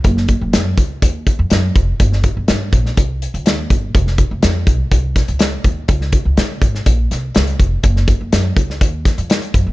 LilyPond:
<<
  \new Staff \with { instrumentName = "Upright bass" } { \clef bass \time 4/4 \key ges \lydian \tempo 4 = 123 ges,,8. ges,,16 ges,8 des,8 ees,8. f,16 ges,8 f,,8 | g,,8. g,,16 g,8 bes,,8 c,8. des,16 ees,8 g,,8 | f,,8. f,,16 f,8 c,8 c,8. des,8. ees,8 | des,8. des,16 des8 aes,,8 bes,,8 c,8 des,8 f,,8 |
ges,,8. ges,,16 ges,8 des,8 ees,8. f,8 r16 ges,16 ges,,16 | }
  \new DrumStaff \with { instrumentName = "Drums" } \drummode { \time 4/4 <hh bd>16 sn16 <hh bd>8 <hh sn>8 <hh bd>8 <hh bd>8 <hh bd>8 <hh sn>8 <hh bd>8 | <hh bd>16 sn16 <hh bd>8 <hh sn>8 <hh bd>16 sn16 <hh bd>8 hh16 hh16 <hh sn>8 <hh bd>8 | <hh bd>16 sn16 <hh bd>8 <hh sn>8 <hh bd>8 <hh bd>8 <hh bd sn>16 hh16 <hh sn>8 <hh bd>8 | <hh bd>16 sn16 <hh bd>8 <hh sn>8 <hh bd>16 sn16 <hh bd>8 <hh sn>8 <hh sn>16 hh16 <hh bd>8 |
<hh bd>16 sn16 <hh bd>8 <hh sn>8 <hh bd>16 sn16 <hh bd>8 <hh bd sn>16 hh16 <hh sn>16 hh16 <hh bd>8 | }
>>